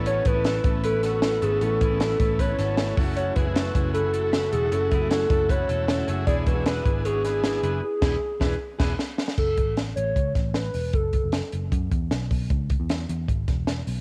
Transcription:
<<
  \new Staff \with { instrumentName = "Soft synth lead" } { \time 4/4 \key fis \minor \tempo 4 = 154 cis''8 b'4. a'8. a'8. gis'8 | a'4 a'4 cis''4. r8 | cis''8 b'4. a'8. a'8. gis'8 | a'4 a'4 cis''4. r8 |
d''8 b'4. gis'2 | gis'2. r4 | a'4 r8 cis''4 r8 b'4 | a'4. r2 r8 |
r1 | }
  \new Staff \with { instrumentName = "Clean electric guitar" } { \time 4/4 \key fis \minor <cis' fis'>8 <e' gis'>8 <e' a'>4 <e' b'>8 <fis' a'>4 <fis' a'>8 | <cis' fis'>8 <e' gis'>8 <e' a'>4 <e' b'>8 <fis' a'>4 <cis' fis'>8 | <cis' fis'>8 <e' gis'>8 <fis' a'>4 <fis' b'>8 <fis' a'>4 <fis' a'>8 | <cis' fis'>8 <e' gis'>8 <fis' a'>4 <fis' b'>8 <fis' a'>4 <fis' a'>8 |
<e' gis'>8 <fis' a'>8 <gis' b'>4 <gis' cis''>8 <gis' b'>4 <gis' b'>8 | r8 <e' gis'>8 r8 <gis' b'>8 r8 <gis' b'>8 r4 | r1 | r1 |
r1 | }
  \new Staff \with { instrumentName = "Transistor combo organ" } { \time 4/4 \key fis \minor <b cis' a'>8 <b cis' a'>8 <b cis' a'>8 <b cis' a'>8 <b cis' b'>8 <b cis' fis'>8 <b cis' fis'>8 <b cis' a'>8 | <b cis' a'>8 <b cis' a'>8 <b cis' fis'>8 <b cis' a'>8 <b cis' a'>8 <b cis' a'>8 <b cis' a'>8 <e' fis' a'>8~ | <e' fis' a'>8 <e' fis' gis'>8 <e' fis' a'>8 <e' fis' gis'>8 <e' fis' gis'>8 <e' fis' a'>8 <e' fis' b'>8 <e' fis' a'>8 | <e' fis' a'>8 <e' fis' a'>8 <e' fis' gis'>8 <e' fis' a'>8 <e' fis' a'>8 <e' fis' a'>8 <e' fis' a'>8 <e' fis' gis'>8 |
<d' e' gis'>8 <d' e' gis'>8 <d' e' fis'>8 <d' e' gis'>8 <d' e' fis'>8 <d' e' gis'>8 <d' e' gis'>8 <d' e' gis'>8 | r8 <d' e' gis'>8 r8 <d' e'>8 r8 <d' e' gis'>8 r4 | r1 | r1 |
r1 | }
  \new Staff \with { instrumentName = "Steel-string acoustic guitar" } { \time 4/4 \key fis \minor <a cis' e' b'>8. <a cis' e' b'>8. <a cis' e' b'>8. <cis' e' b'>8. <a cis' e' b'>4 | <a cis' e' b'>8. <a cis' e' b'>8. <a cis' e' b'>8. <cis' e' b'>8. <a cis' e' b'>8 <fis, cis e a cis' fis'>8~ | <fis, cis e a cis' fis'>8. <fis, cis e a cis' fis'>8. <fis, cis e a cis' fis'>8. <e a cis' fis'>8. <fis, cis e a cis' fis'>4 | <fis, cis e a cis' fis'>8. <fis, cis e a cis' fis'>8. <fis, cis e a cis' fis'>8. <e a cis' fis'>8. <fis, cis e a cis' fis'>4 |
<e b d' gis'>8. <e b d' gis'>8. <e b d' gis'>8. <b d' gis'>8. <e b d' gis'>4 | r8 <e b d' gis'>8 r8 <e b d' gis'>8 r8 <b d' gis'>8 r4 | r1 | r1 |
r1 | }
  \new Staff \with { instrumentName = "Picked electric bass" } { \clef bass \time 4/4 \key fis \minor a,,8 a,,4 a,,2 gis,,8 | a,,8 a,,4 a,,4 gis,,4 fis,,8~ | fis,,8 fis,,4 fis,,2 e,,8 | fis,,8 fis,,4 fis,,4 e,,4 fis,,8 |
e,,8 e,,4 gis,,2 fis,,8 | r8 e,,8 r8 e,,8 r8 e,,8 r4 | fis,,8. a,,8. a,,8 cis,8 a,,4 e,,8 | fis,,8. fis,,8 r16 fis,,8 fis,8 e,8 b,,8 b,,8 |
cis,8. e,8. e,8 gis,,8 e,,4 b,,8 | }
  \new DrumStaff \with { instrumentName = "Drums" } \drummode { \time 4/4 hh8 <hh bd>8 <hh sn>8 <hh bd>8 hh8 <hh sn>8 <hh sn>8 hh8 | hh8 <hh bd>8 <hh sn>8 <hh bd>8 <hh bd>8 <hh sn>8 <hh sn>8 <hho bd>8 | hh8 <hh bd>8 <hh sn>8 <hh bd>8 hh8 hh8 <hh sn>8 hh8 | hh8 <hh bd>8 <hh sn>8 <hh bd>8 <hh bd>8 hh8 <hh sn>8 hh8 |
<hh bd>8 <hh bd>8 <hh sn>8 <hh bd>8 hh8 <hh sn>8 <hh sn>8 hh8 | r8 <cymc bd sn>8 r8 <bd sn>8 r8 <cymc bd sn>8 sn8 sn16 sn16 | <cymc bd>8 <hh bd>8 <hh sn>8 hh8 <hh bd>8 <hh bd sn>8 <hh sn>8 hho8 | <hh bd>8 <hh bd>8 <hh sn>8 hh8 <hh bd>8 <hh bd>8 <hh sn>8 <hho bd>8 |
<hh bd>8 <hh bd>8 <hh sn>8 hh8 <hh bd>8 <hh bd sn>8 <hh sn>8 hho8 | }
>>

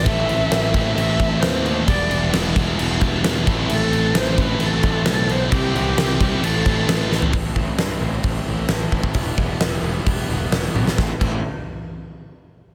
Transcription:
<<
  \new Staff \with { instrumentName = "Cello" } { \time 4/4 \key a \minor \tempo 4 = 132 e''2 e''4 c''4 | d''4 r2. | a'4 c''8 b'8 a'4 a'8 c''8 | g'2 a'4. r8 |
r1 | r1 | r1 | }
  \new Staff \with { instrumentName = "Overdriven electric guitar" } { \time 4/4 \key a \minor <a, e a c' e'>8 <a, e a c' e'>8 <a, e a c' e'>8 <a, e a c' e'>8 <a, e a c' e'>8 <a, e a c' e'>8 <a, e a c' e'>8 <a, e a c' e'>8 | <e g b e'>8 <e g b e'>8 <e g b e'>8 <e g b e'>8 <e g b e'>8 <e g b e'>8 <e g b e'>8 <a, e a c' e'>8 | <a, e a c' e'>8 <a, e a c' e'>8 <a, e a c' e'>8 <a, e a c' e'>8 <a, e a c' e'>8 <a, e a c' e'>8 <a, e a c' e'>8 <a, e a c' e'>8 | <c e g c' e'>8 <c e g c' e'>8 <c e g c' e'>8 <c e g c' e'>8 <a, e a c' e'>8 <a, e a c' e'>8 <a, e a c' e'>8 <a, e a c' e'>8 |
<a, e a c' e'>8 <a, e a c' e'>8 <a, e a c' e'>8 <a, e a c' e'>8 <a, e a c' e'>8 <a, e a c' e'>8 <a, e a c' e'>8 <a, e a c' e'>8 | <e g b e'>8 <e g b e'>8 <e g b e'>8 <e g b e'>8 <e g b e'>8 <e g b e'>8 <e g b e'>8 <e g b e'>8 | <a, e a c' e'>8 <a, e a c' e'>8 r2. | }
  \new Staff \with { instrumentName = "Overdriven electric guitar" } { \time 4/4 \key a \minor <a, e a c' e'>1 | <e g b e'>2.~ <e g b e'>8 <a, e a c' e'>8~ | <a, e a c' e'>2.~ <a, e a c' e'>8 r8 | <c e g c' e'>2 <a, e a c' e'>2 |
r1 | r1 | r1 | }
  \new Staff \with { instrumentName = "Distorted electric guitar" } { \clef bass \time 4/4 \key a \minor <a, e a>8 <a, e a>8 <e a>8 <a, e a>8 <a, e a>8 <a, e a>8 <a, e a>8 <a, e a>8 | <e, b, e>8 <e, b, e>8 <e, b, e>8 <e, b, e>8 <e, b, e>8 <e, b, e>8 <e, b, e>8 <a, e a>8 | <a, e a>8 <a, e a>8 <a, e a>8 <a, e a>8 <a, e a>8 <a, e a>8 <a, e a>8 <a, e a>8 | <c g c'>8 <c g c'>8 <c g c'>8 <c g c'>8 <a, e a>8 <a, e a>8 <a, e a>8 <a, e a>8 |
r1 | r1 | r1 | }
  \new Staff \with { instrumentName = "Picked electric bass" } { \clef bass \time 4/4 \key a \minor a,,4 a,,4 a,,8 a,,8 dis,4 | e,,8 e,,8 e,,8 e,,8 e,,8 e,,8 e,,8 a,,8 | a,,4 a,,4 a,,8 a,,8 b,,4 | c,8 c,8 c,8 c,8 a,,8 a,,8 a,,8 a,,8 |
a,,8 a,,8 g,8 a,,8 a,,8 a,,8 a,,8 a,,8 | e,,8 e,,8 e,,8 e,,8 e,,8 e,,8 e,,8 b,,8 | a,,8 a,,8 r2. | }
  \new DrumStaff \with { instrumentName = "Drums" } \drummode { \time 4/4 <cymc bd>8 cymc8 <cymc sn>8 <cymc bd>8 cymc8 <cymc bd>8 <cymc sn>8 cymc8 | <cymc bd>8 cymc8 <cymc sn>8 <cymc bd>8 cymc8 <cymc bd>8 <cymc sn>8 <cymc bd>8 | cymc8 cymc8 <cymc sn>8 <cymc bd>8 cymc8 <cymc bd>8 <cymc sn>8 cymc8 | <cymc bd>8 cymc8 <cymc sn>8 <cymc bd>8 cymc8 <cymc bd>8 <cymc sn>8 sn16 tomfh16 |
<hho bd>8 bd8 <hho sn>4 <hho bd>4 <hho sn>8 bd16 bd16 | <hho bd>8 bd8 <hho sn>4 <hho bd>4 <hho sn>8 tommh16 sn16 | <bd sn>8 <cymc bd>8 r4 r4 r4 | }
>>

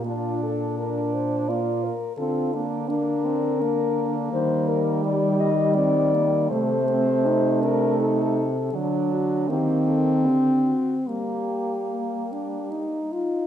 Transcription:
<<
  \new Staff \with { instrumentName = "French horn" } { \time 3/4 \key bes \major \tempo 4 = 82 f'8 a'8 bes'8 c''8 d''8 bes'8 | a'8 r8 bes'2 | c''8 bes'8 d''8 ees''8 d''4 | c''4. bes'8 a'4 |
d'8 fis'8 g'8 a'8 g'8 fis'8 | g'2 r8 ees'8 | }
  \new Staff \with { instrumentName = "French horn" } { \time 3/4 \key bes \major d'4 d'4 f'8 r8 | f'8 d'8 bes8 c'8 d'4 | g2. | a2. |
fis4 bes4 c'8 r8 | bes2~ bes8 r8 | }
  \new Staff \with { instrumentName = "French horn" } { \time 3/4 \key bes \major d'2 bes8 r8 | c'8 bes8 d'4 bes4~ | bes4 g4 c'8 bes8 | a8 c'8 ees'8 d'8 ees'8 r8 |
d'4 c'2 | bes4 bes8 d'8 ees'8 f'8 | }
  \new Staff \with { instrumentName = "French horn" } { \clef bass \time 3/4 \key bes \major bes,2~ bes,8 r8 | d2. | ees2. | c2. |
d4 ees4 d8 r8 | g2~ g8 r8 | }
>>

